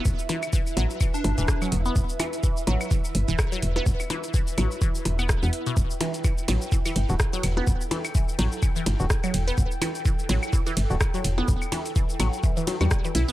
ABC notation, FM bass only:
X:1
M:4/4
L:1/16
Q:"Swing 16ths" 1/4=126
K:Em
V:1 name="FM bass" clef=bass
E,,, z4 z A,,, z3 G,,, D,,, z2 E,,, z | E,,, z4 z A,,, z3 G,,, D,,, z2 E,,, z | E,,, z4 z A,,, z3 E,,,2 z E,, z2 | E,,, z4 z A,,, z3 G,,, D,,, z2 E,,, z |
E,,, z4 z A,,, z3 G,,, D,,, z2 E,,, z | E,,, z4 z A,,, z3 G,,, D,,, z2 E,,, z | E,,, z4 z A,,, z4 E,, z2 B,,, z |]